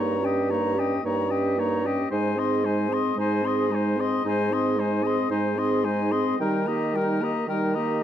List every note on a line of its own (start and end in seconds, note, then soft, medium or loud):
0.00 0.92 G2 medium
0.00 0.23 A#3 soft
0.00 0.24 D#4 soft
0.00 0.28 C#5 soft
0.00 0.26 A#5 medium
0.21 0.52 C#4 soft
0.21 0.52 G4 soft
0.21 0.52 G5 soft
0.26 0.52 D#5 soft
0.50 0.78 A#3 soft
0.50 0.76 D#4 soft
0.50 0.81 C#5 soft
0.50 0.81 A#5 soft
0.74 1.03 C#4 soft
0.74 1.03 G4 soft
0.79 1.05 D#5 medium
0.79 1.05 G5 soft
1.03 1.99 G2 medium
1.03 1.31 A#3 soft
1.03 1.32 D#4 soft
1.03 1.32 C#5 medium
1.03 1.33 A#5 medium
1.30 1.58 C#4 soft
1.30 1.59 G4 soft
1.30 1.61 D#5 soft
1.30 1.61 G5 soft
1.57 1.86 A#3 medium
1.57 1.86 D#4 medium
1.57 1.88 C#5 soft
1.57 1.88 A#5 soft
1.84 2.10 C#4 medium
1.84 2.10 G4 medium
1.84 2.11 D#5 soft
1.84 2.11 G5 medium
2.10 3.05 G#2 medium
2.10 2.39 G#3 medium
2.10 2.38 D#4 medium
2.10 2.41 C5 medium
2.10 2.40 G#5 medium
2.36 2.65 C4 soft
2.36 2.66 G#4 soft
2.36 2.67 D#5 soft
2.36 2.68 C6 medium
2.64 2.90 G#3 medium
2.64 2.90 D#4 soft
2.64 2.95 C5 soft
2.64 2.94 G#5 medium
2.88 3.15 C4 medium
2.88 3.16 G#4 soft
2.93 3.19 D#5 soft
2.93 3.18 C6 soft
3.16 4.13 G#2 medium
3.16 3.44 G#3 soft
3.16 3.45 D#4 medium
3.16 3.47 G#5 medium
3.20 3.50 C5 medium
3.42 3.71 C4 soft
3.42 3.73 G#4 soft
3.42 3.74 C6 soft
3.48 3.77 D#5 soft
3.69 3.98 G#3 medium
3.69 4.00 D#4 medium
3.69 4.01 G#5 soft
3.75 4.02 C5 medium
3.97 4.24 C4 soft
3.97 4.23 G#4 medium
3.97 4.26 D#5 medium
3.97 4.26 C6 soft
4.24 5.18 G#2 medium
4.24 4.53 G#3 medium
4.24 4.53 D#4 medium
4.24 4.55 G#5 medium
4.29 4.55 C5 medium
4.51 4.78 C4 soft
4.51 4.79 G#4 soft
4.51 4.81 D#5 soft
4.51 4.82 C6 soft
4.77 5.04 G#3 soft
4.77 5.05 D#4 soft
4.77 5.05 C5 soft
4.77 5.08 G#5 soft
5.03 5.30 C4 medium
5.03 5.30 G#4 soft
5.03 5.30 D#5 medium
5.07 5.31 C6 soft
5.31 6.27 G#2 medium
5.31 5.58 G#3 soft
5.31 5.59 D#4 medium
5.31 5.60 C5 medium
5.31 5.60 G#5 medium
5.56 5.86 C4 soft
5.56 5.87 G#4 soft
5.56 5.86 D#5 soft
5.56 5.86 C6 soft
5.85 6.14 G#3 medium
5.85 6.14 D#4 medium
5.85 6.13 C5 medium
5.85 6.13 G#5 medium
6.12 6.39 C4 medium
6.12 6.38 G#4 medium
6.12 6.39 D#5 soft
6.12 6.38 C6 medium
6.39 7.36 D#3 medium
6.39 6.68 G3 medium
6.39 6.70 D#4 medium
6.39 6.70 A#4 medium
6.39 6.68 G5 medium
6.66 6.96 A#3 soft
6.66 6.98 G4 soft
6.66 6.98 D#5 medium
6.66 6.97 A#5 medium
6.94 7.22 G3 medium
6.94 7.24 D#4 medium
6.94 7.26 A#4 soft
6.94 7.23 G5 medium
7.21 7.48 A#3 medium
7.21 7.48 G4 medium
7.21 7.49 D#5 medium
7.21 7.48 A#5 medium
7.48 8.03 D#3 medium
7.48 7.77 G3 soft
7.48 7.78 D#4 medium
7.48 7.77 A#4 medium
7.48 7.76 G5 medium
7.74 8.03 A#3 medium
7.74 8.03 G4 medium
7.74 8.03 D#5 soft
7.74 8.03 A#5 soft